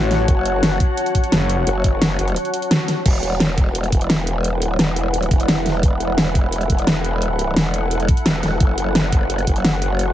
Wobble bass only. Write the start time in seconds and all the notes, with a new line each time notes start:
0.28 F#1
1.67 F#1
2.19 F#1
3.06 E1
3.92 E1
4.52 D#1
4.79 E1
5.31 E1
5.83 E1
6.70 E1
7.56 E1
8.26 E1
8.43 E1
8.61 F#1
9.47 F#1